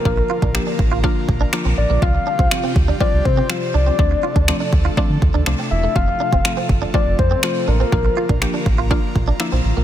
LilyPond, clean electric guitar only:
\new Staff \with { instrumentName = "Clean electric guitar" } { \time 4/4 \key bes \lydian \tempo 4 = 122 r8 f'16 d'16 r16 d'16 r16 f'16 d'16 r8 d'16 r16 c'16 r16 bes16 | r8 d'16 c'16 r16 c'16 r16 d'16 c'16 r8 c'16 r8 d'16 c'16 | r8 f'16 d'16 r16 d'16 r16 f'16 d'16 r8 d'16 r16 c'16 r16 a16 | r8 d'16 c'16 r16 c'16 r16 d'16 c'16 r8 c'16 r8 d'16 c'16 |
r8 f'16 d'16 r16 d'16 r16 f'16 d'16 r8 d'16 r16 c'16 r16 bes16 | }